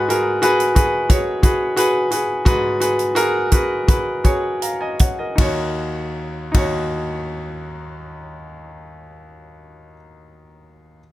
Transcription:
0.00 0.72 G#2 medium
0.00 0.09 F#4 medium
0.00 0.10 G#4 medium
0.00 0.43 B4 medium
0.09 0.36 F#4 medium
0.09 0.37 G#4 medium
0.09 0.37 A#4 medium
0.09 closed hi-hat medium
0.42 0.69 F#4 medium
0.42 0.70 G#4 medium
0.42 0.70 B4 loud
0.42 closed hi-hat medium
0.60 closed hi-hat soft
0.75 1.03 F#4 medium
0.75 1.03 G#4 medium
0.75 1.04 B4 medium
0.75 kick medium
0.75 closed hi-hat medium
1.09 1.37 F#4 medium
1.09 1.37 G#4 medium
1.09 1.37 C#5 medium
1.09 kick medium
1.09 closed hi-hat medium
1.43 1.71 F#4 medium
1.43 1.71 G#4 medium
1.43 1.71 B4 medium
1.43 kick medium
1.43 closed hi-hat medium
1.76 2.05 F#4 medium
1.76 2.05 G#4 medium
1.76 2.05 B4 medium
1.76 closed hi-hat medium
2.11 2.39 F#4 medium
2.11 2.39 G#4 medium
2.11 2.40 B4 medium
2.11 closed hi-hat medium
2.45 3.48 G#2 medium
2.45 2.74 F#4 medium
2.45 2.74 G#4 medium
2.45 2.75 B4 medium
2.45 kick medium
2.45 closed hi-hat medium
2.80 3.09 F#4 medium
2.80 3.10 G#4 medium
2.80 3.10 B4 medium
2.80 closed hi-hat medium
2.99 closed hi-hat soft
3.15 3.45 F#4 medium
3.15 3.45 G#4 medium
3.15 3.45 A#4 medium
3.15 closed hi-hat medium
3.52 3.81 F#4 medium
3.52 3.81 G#4 medium
3.52 3.82 B4 medium
3.52 kick medium
3.52 closed hi-hat medium
3.88 4.18 F#4 medium
3.88 4.18 G#4 medium
3.88 4.18 B4 medium
3.88 kick medium
3.88 closed hi-hat medium
4.24 4.55 F#4 medium
4.24 4.55 G#4 medium
4.24 4.55 C#5 medium
4.24 kick medium
4.24 closed hi-hat medium
4.62 4.80 F5 soft
4.62 4.80 A#5 soft
4.62 closed hi-hat medium
4.81 4.99 D#5 soft
4.81 4.99 G#5 medium
4.99 5.18 C#5 soft
4.99 5.18 F#5 soft
4.99 kick medium
4.99 closed hi-hat medium
5.19 5.56 A#4 soft
5.19 5.56 D#5 soft
5.36 5.60 D#2 medium
5.36 5.58 D#4 medium
5.36 5.60 F#4 medium
5.36 kick medium
5.36 ride medium
5.41 5.61 C#5 medium
6.52 9.95 D#2 medium
6.52 9.93 D#4 medium
6.52 9.95 F#4 medium
6.52 kick medium
6.52 ride medium
6.58 9.96 C#5 medium

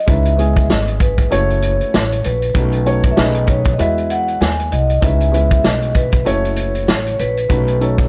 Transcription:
0.06 0.67 C#2 loud
0.06 0.34 G#3 medium
0.06 0.35 C#4 medium
0.06 0.35 D#4 medium
0.06 0.35 E4 medium
0.06 0.35 B4 medium
0.06 0.66 E5 medium
0.06 kick loud
0.06 closed hi-hat medium
0.25 closed hi-hat medium
0.37 1.30 G#3 medium
0.37 1.31 B3 medium
0.37 1.29 C#4 medium
0.37 1.30 E4 medium
0.37 1.31 G#4 medium
0.37 closed hi-hat medium
0.56 kick loud
0.56 closed hi-hat medium
0.70 1.29 G#1 medium
0.70 0.85 D#5 medium
0.70 snare loud
0.88 closed hi-hat soft
1.00 1.33 B4 medium
1.00 kick medium
1.00 closed hi-hat medium
1.18 kick medium
1.18 closed hi-hat medium
1.30 1.78 F#1 loud
1.30 2.41 A3 medium
1.30 2.41 C#4 medium
1.30 2.41 E4 medium
1.30 2.41 F#4 medium
1.30 2.42 C#5 medium
1.30 2.21 C#5 medium
1.30 closed hi-hat medium
1.50 closed hi-hat soft
1.62 closed hi-hat medium
1.81 muted upright bass stroke soft
1.81 closed hi-hat soft
1.94 2.23 A1 medium
1.94 snare loud
2.12 closed hi-hat medium
2.24 2.54 A#1 loud
2.24 3.14 B4 medium
2.24 closed hi-hat medium
2.42 closed hi-hat soft
2.54 3.14 B1 loud
2.54 2.82 A3 medium
2.54 2.82 C#4 medium
2.54 2.82 D#4 medium
2.54 2.83 F#4 medium
2.54 2.83 B4 medium
2.54 kick loud
2.54 closed hi-hat medium
2.72 closed hi-hat medium
2.85 3.14 A3 medium
2.85 3.15 C#4 medium
2.85 3.15 D#4 medium
2.85 3.17 F#4 medium
2.85 3.17 C#5 medium
2.85 closed hi-hat medium
3.04 kick loud
3.04 closed hi-hat medium
3.11 3.17 E5 medium
3.16 3.76 B1 loud
3.16 3.71 A3 medium
3.16 3.72 C#4 medium
3.16 3.72 D#4 medium
3.16 3.72 G#4 medium
3.16 3.72 B4 medium
3.16 3.46 D#5 medium
3.16 snare loud
3.34 closed hi-hat medium
3.47 3.74 C#5 medium
3.47 kick medium
3.47 closed hi-hat medium
3.65 kick medium
3.65 closed hi-hat soft
3.73 3.79 D#5 medium
3.78 4.38 E2 medium
3.78 4.88 G#3 medium
3.78 4.89 B3 medium
3.78 4.89 E4 medium
3.78 4.89 F#4 medium
3.78 4.89 B4 medium
3.78 4.11 E5 medium
3.78 closed hi-hat medium
3.98 closed hi-hat soft
4.10 4.39 F#5 medium
4.10 closed hi-hat medium
4.28 closed hi-hat soft
4.41 4.70 D#2 medium
4.41 4.73 G#5 loud
4.41 snare loud
4.60 closed hi-hat medium
4.72 5.01 C2 medium
4.72 5.04 D#5 loud
4.72 closed hi-hat medium
4.90 closed hi-hat medium
5.01 5.61 C#2 loud
5.01 5.29 G#3 medium
5.01 5.30 C#4 medium
5.01 5.30 D#4 medium
5.01 5.30 E4 medium
5.01 5.31 B4 medium
5.01 5.33 E5 medium
5.01 kick loud
5.01 closed hi-hat medium
5.20 closed hi-hat medium
5.32 6.25 G#3 medium
5.32 6.26 B3 medium
5.32 6.24 C#4 medium
5.32 6.25 E4 medium
5.32 6.26 B4 medium
5.32 5.66 E5 loud
5.32 closed hi-hat medium
5.51 kick loud
5.51 closed hi-hat medium
5.64 6.23 B1 medium
5.64 5.96 D#5 medium
5.64 snare loud
5.82 closed hi-hat soft
5.94 6.24 B4 medium
5.94 kick medium
5.94 closed hi-hat medium
6.12 kick medium
6.12 closed hi-hat soft
6.25 6.85 F#1 medium
6.25 7.35 A3 medium
6.25 7.36 C#4 medium
6.25 7.36 E4 medium
6.25 7.36 F#4 medium
6.25 7.12 C#5 medium
6.25 7.36 C#5 medium
6.25 closed hi-hat medium
6.45 closed hi-hat soft
6.56 closed hi-hat medium
6.75 closed hi-hat soft
6.88 7.18 A1 medium
6.88 snare loud
7.07 closed hi-hat medium
7.14 7.19 C#5 medium
7.19 7.49 A#1 medium
7.19 7.83 B4 medium
7.19 closed hi-hat medium
7.37 closed hi-hat medium
7.48 8.09 B1 loud
7.48 7.77 A3 medium
7.48 7.77 C#4 medium
7.48 7.77 D#4 medium
7.48 7.77 F#4 medium
7.48 7.77 B4 medium
7.48 kick loud
7.48 closed hi-hat medium
7.68 closed hi-hat medium
7.80 8.09 A3 medium
7.80 8.09 C#4 medium
7.80 8.09 D#4 medium
7.80 8.09 F#4 medium
7.80 8.09 A4 medium
7.80 8.09 C#5 medium
7.80 closed hi-hat medium
7.98 kick loud
7.98 closed hi-hat medium

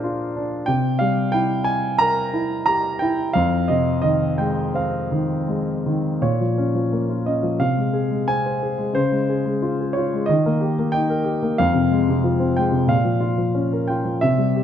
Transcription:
0.00 0.64 A#2 medium
0.00 0.69 F3 soft
0.00 0.36 D4 soft
0.00 0.04 F4 soft
0.00 0.66 F4 soft
0.00 0.64 G#4 medium
0.00 0.30 A#4 medium
0.00 0.69 C5 medium
0.00 0.69 D5 medium
0.36 0.67 D4 medium
0.66 3.31 C3 medium
0.66 1.00 G5 medium
0.99 2.30 G3 soft
0.99 1.34 F5 medium
1.32 2.32 E4 medium
1.32 1.64 G5 medium
1.64 2.00 G#5 medium
1.98 3.31 A#4 medium
1.98 2.64 A#5 medium
2.34 3.01 E4 soft
2.66 3.33 G4 soft
2.66 3.01 A#5 medium
2.99 3.34 E4 medium
2.99 3.35 G5 medium
3.33 6.17 F2 medium
3.33 3.69 F5 medium
3.68 5.07 C3 soft
3.68 4.00 D#5 medium
4.02 5.10 D#3 medium
4.02 4.38 D#5 medium
4.38 5.46 G#3 soft
4.38 4.75 G5 medium
4.74 6.16 C4 medium
4.74 5.82 F5 medium
5.12 5.85 D#3 soft
5.48 6.18 G#3 soft
5.86 6.20 D#3 soft
6.21 7.56 A#2 medium
6.21 7.29 C#5 medium
6.41 6.74 F3 soft
6.58 7.25 C#4 soft
6.75 7.41 F3 soft
6.92 7.58 A#3 soft
7.09 7.59 F4 soft
7.26 7.59 C#4 soft
7.26 7.61 D#5 medium
7.43 7.59 F3 soft
7.59 8.91 C3 medium
7.59 8.30 F5 medium
7.77 8.09 G#3 soft
7.93 8.61 G#4 soft
8.11 8.77 G#3 soft
8.28 8.93 C4 soft
8.28 8.75 G#5 medium
8.46 8.93 C5 soft
8.63 8.95 G#4 soft
8.78 8.94 G#3 soft
8.94 10.23 C#3 medium
8.94 9.98 C5 medium
9.12 9.44 G#3 soft
9.29 9.79 G#4 soft
9.46 10.12 G#3 soft
9.62 9.95 F4 medium
9.80 10.27 G#4 soft
9.93 10.28 F4 medium
9.93 10.28 C#5 medium
10.13 10.28 G#3 soft
10.26 11.56 D#3 medium
10.26 10.95 D#5 medium
10.46 10.77 A#3 soft
10.61 11.23 G4 medium
10.79 11.41 A#3 soft
10.92 11.58 D#4 soft
10.92 11.39 G5 medium
11.10 11.58 A#4 soft
11.25 11.58 G4 medium
11.42 11.59 A#3 soft
11.58 12.87 F2 medium
11.58 12.61 F5 medium
11.74 12.08 C3 soft
11.91 12.56 G#3 medium
12.09 12.70 C3 soft
12.24 12.89 F3 medium
12.40 12.89 C4 medium
12.57 12.90 G#3 soft
12.57 12.91 G5 medium
12.72 12.89 C3 soft
12.87 14.16 A#2 medium
12.87 13.91 F5 medium
13.04 13.37 F3 soft
13.20 13.88 F4 soft
13.38 14.03 F3 soft
13.55 14.19 C#4 soft
13.73 14.21 A#4 soft
13.88 14.22 F4 soft
13.88 14.22 G5 medium
14.04 14.21 F3 soft
14.21 14.64 C3 medium
14.21 14.64 E5 medium
14.38 14.64 G3 soft
14.56 14.64 G4 soft

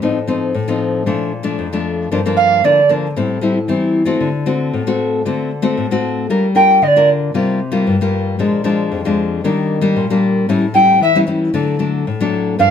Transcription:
0.02 0.52 A2 medium
0.02 0.18 F3 medium
0.02 0.18 C4 medium
0.02 0.18 D#4 medium
0.27 0.53 F3 medium
0.27 0.53 C4 medium
0.27 0.53 D#4 medium
0.54 1.04 A2 medium
0.68 1.03 F3 medium
0.68 1.03 C4 medium
0.68 1.03 D#4 medium
1.06 1.56 A#2 medium
1.06 1.31 F3 medium
1.06 1.31 A3 medium
1.06 1.32 D4 medium
1.43 1.67 F3 medium
1.43 1.67 A3 medium
1.43 1.67 D4 medium
1.59 2.09 F2 medium
1.73 2.08 F3 medium
1.73 2.08 A3 medium
1.73 2.08 D4 medium
2.11 2.61 G2 medium
2.11 2.19 F3 medium
2.11 2.20 A#3 medium
2.11 2.20 D4 medium
2.26 2.60 F3 medium
2.26 2.61 A#3 medium
2.26 2.61 D4 medium
2.36 2.66 F5 loud
2.64 3.14 D3 medium
2.64 2.79 F3 medium
2.64 2.79 A#3 medium
2.64 2.80 D4 medium
2.64 2.90 D5 medium
2.89 3.07 F3 medium
2.89 3.07 A#3 medium
2.89 3.07 D4 medium
3.16 3.66 A2 medium
3.16 3.38 G3 medium
3.16 3.39 C4 medium
3.16 3.39 E4 medium
3.41 3.57 G3 medium
3.41 3.58 C4 medium
3.41 3.58 E4 medium
3.68 4.18 E3 medium
3.68 4.04 G3 medium
3.68 4.04 C4 medium
3.68 4.04 E4 medium
4.05 4.29 A3 medium
4.05 4.29 C4 medium
4.05 4.29 F#4 medium
4.21 4.70 D3 medium
4.46 4.82 A3 medium
4.46 4.82 C4 medium
4.46 4.82 F#4 medium
4.73 5.23 A2 medium
4.87 5.22 A3 medium
4.87 5.22 C4 medium
4.87 5.22 F#4 medium
5.25 5.75 D3 medium
5.25 5.50 A3 medium
5.25 5.50 C4 medium
5.25 5.51 F#4 medium
5.62 5.85 A3 medium
5.62 5.86 C4 medium
5.62 5.86 F#4 medium
5.77 6.27 A2 medium
5.91 6.26 A3 medium
5.91 6.26 C4 medium
5.91 6.27 F#4 medium
6.30 6.80 G3 medium
6.30 6.45 D4 medium
6.30 6.46 F4 medium
6.30 6.46 A#4 medium
6.55 6.80 D4 medium
6.55 6.80 F4 medium
6.55 6.81 A#4 medium
6.55 6.84 G5 loud
6.82 7.32 D3 medium
6.82 6.88 D#5 medium
6.87 7.09 D5 medium
6.96 7.31 D4 medium
6.96 7.31 F4 medium
6.96 7.31 A#4 medium
7.34 7.84 C3 medium
7.34 7.59 G3 medium
7.34 7.59 A#3 medium
7.34 7.60 F4 medium
7.72 7.95 G3 medium
7.72 7.95 A#3 medium
7.72 7.95 F4 medium
7.87 8.37 G2 medium
8.01 8.36 G3 medium
8.01 8.36 A#3 medium
8.01 8.36 F4 medium
8.39 8.89 A#2 medium
8.39 8.61 F3 medium
8.39 8.61 G#3 medium
8.39 8.62 D4 medium
8.64 9.00 F3 medium
8.64 9.00 G#3 medium
8.64 9.01 D4 medium
8.92 9.42 F2 medium
9.05 9.40 F3 medium
9.05 9.41 G#3 medium
9.05 9.41 D4 medium
9.44 9.94 D#3 medium
9.44 9.80 G3 soft
9.44 9.80 A#3 medium
9.44 9.80 D4 medium
9.81 10.05 G3 medium
9.81 10.05 A#3 medium
9.81 10.05 D4 medium
9.96 10.46 A#2 medium
10.10 10.45 G3 medium
10.10 10.46 A#3 medium
10.10 10.46 D4 medium
10.49 10.99 A2 medium
10.49 10.65 G3 medium
10.49 10.65 C#4 medium
10.49 10.65 E4 medium
10.74 10.99 G3 medium
10.74 11.00 C#4 medium
10.74 11.00 E4 medium
10.74 10.99 G5 medium
11.01 11.51 E3 medium
11.01 11.18 E5 medium
11.15 11.24 G3 medium
11.15 11.24 C#4 medium
11.15 11.25 E4 medium
11.27 11.52 G3 medium
11.27 11.52 C#4 medium
11.27 11.52 E4 medium
11.54 12.04 D3 medium
11.54 11.76 F#3 medium
11.54 11.76 A3 medium
11.54 11.77 D4 medium
11.79 12.05 F#3 medium
11.79 12.05 A3 medium
11.79 12.05 D4 medium
12.07 12.57 A2 medium
12.20 12.56 F#3 medium
12.20 12.56 A3 medium
12.20 12.56 D4 medium
12.59 12.71 G2 medium
12.59 12.71 F3 medium
12.59 12.71 A#3 medium
12.59 12.71 D4 medium
12.59 12.71 F5 medium

